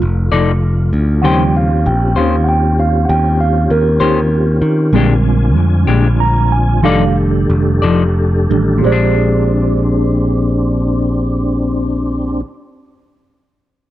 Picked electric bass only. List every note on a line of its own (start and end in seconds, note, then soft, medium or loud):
0.02 0.30 F1 medium
0.32 0.90 F1 loud
0.93 1.22 D2 medium
1.24 1.88 D#2 medium
1.86 2.14 A#1 medium
2.17 3.05 D#2 medium
3.09 3.66 D#2 loud
3.70 3.98 D#2 medium
4.01 4.58 D#2 loud
4.62 4.91 D#3 medium
4.93 5.56 A#1 loud
5.56 5.85 F2 medium
5.88 6.84 A#1 medium
6.84 7.45 F1 medium
7.50 7.80 F1 medium
7.83 8.46 F1 loud
8.51 8.82 A1 medium
8.84 12.41 A#1 medium